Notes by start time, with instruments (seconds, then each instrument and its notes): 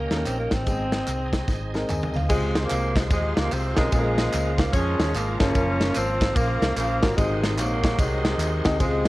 Already playing: alto saxophone A#3, tonewheel organ C#4 G4 A#4 D#5
0.11 fingered electric bass D#2, grand piano A#3 C#4 D#4 A4, snare, closed hi-hat, tambourine
0.17 grand piano A#4
0.26 fingered electric bass A#1, alto saxophone C4, clap, closed hi-hat, tambourine
0.39 alto saxophone A#3
0.51 fingered electric bass A1, alto saxophone C4, kick, snare, closed hi-hat, tambourine
0.66 fingered electric bass G#1, grand piano G#2 G#3 B3 D#4 G#4, tonewheel organ C4 D#4 G#4, kick, closed hi-hat, tambourine
0.73 grand piano C4
0.92 snare, closed hi-hat, tambourine
1.08 fingered electric bass C2, clap, closed hi-hat, tambourine
1.33 kick, snare, closed hi-hat, tambourine
1.48 fingered electric bass G#1, kick, snare, tambourine
1.74 grand piano G#3 C4 D#4 A#4, snare, tambourine
1.89 fingered electric bass D#2, grand piano G#5, clap, mid tom, tambourine
2.03 floor tom
2.14 fingered electric bass D2, grand piano F5, floor tom, tambourine
2.29 fingered electric bass C#2, grand piano C3 G#3 C4 F4 G#4 C5, saxophone section C3 F3 G#3, tonewheel organ G#3 F4 C5, kick, crash, tambourine
2.55 snare, ride bell, tambourine
2.63 saxophone section F3 A#3
2.70 fingered electric bass C2, clap, ride bell, tambourine
2.96 saxophone section G#3, kick, snare, ride bell, tambourine
3.11 fingered electric bass D#2, saxophone section C3 F3 G#3, kick, ride bell, tambourine
3.37 fingered electric bass C#2, saxophone section A#3, snare, ride bell, tambourine
3.51 fingered electric bass C2, saxophone section C4, clap, ride bell, tambourine
3.76 fingered electric bass B1, saxophone section G#3, grand piano C4 C#4 F4 G#4 A#4, kick, snare, ride bell, tambourine
3.92 fingered electric bass A#1, grand piano A#2 A#3 C#4 F4 G#4 A4, saxophone section C#3 F3 G#3, tonewheel organ A#4, kick, ride bell, tambourine
3.99 grand piano A#4
4.18 snare, ride bell, tambourine
4.33 fingered electric bass C#2, clap, ride bell, tambourine
4.58 saxophone section A#3, kick, snare, ride bell, tambourine
4.73 fingered electric bass F2, saxophone section F3 G#3 C#4, kick, ride bell, tambourine
4.99 fingered electric bass D#2, snare, ride bell, tambourine
5.14 fingered electric bass G#1, saxophone section A#3, clap, ride bell, tambourine
5.39 fingered electric bass G1, saxophone section F3 A#3 C#4, grand piano A#3 C#4 F4 G#4 A#4, kick, snare, ride bell, tambourine
5.54 fingered electric bass F#1, tonewheel organ F3, grand piano A#3 C#4 F4 A#4, kick, ride bell, tambourine
5.81 snare, ride bell, tambourine
5.94 fingered electric bass G#1, saxophone section F3 C4, clap, ride bell, tambourine
6.21 kick, snare, ride bell, tambourine
6.36 fingered electric bass A#1, saxophone section C#3 F3 A#3, kick, ride bell, tambourine
6.62 fingered electric bass C2, snare, ride bell, tambourine
6.76 fingered electric bass A#1, saxophone section C#3 F3 A#3, clap, ride bell, tambourine
7.02 fingered electric bass G#1, grand piano A#3 C#4 F4 F#4 A#4, kick, snare, ride bell, tambourine
7.17 fingered electric bass G#1, grand piano G#2 C4 D#4 F#4 G#4 C5, saxophone section C3 D#3 G#3, tonewheel organ G#3 D#4 F#4 C5, kick, ride bell, tambourine
7.43 snare, ride bell, tambourine
7.58 fingered electric bass A#1, saxophone section D#3 F#3 A#3, clap, ride bell, tambourine
7.83 kick, snare, ride bell, tambourine
7.98 fingered electric bass C2, saxophone section C3 D#3 G#3, kick, ride bell, tambourine
8.25 snare, ride bell, tambourine
8.38 fingered electric bass D#2, clap, ride bell, tambourine
8.64 fingered electric bass D2, grand piano C4 D#4 F#4 G#4 D#5, kick, snare, ride bell, tambourine
8.79 fingered electric bass C#2, grand piano C3 G#3 C4 F4 G#4 C5, saxophone section C3 F3 G#3, tonewheel organ G#3 F4, kick, ride bell, tambourine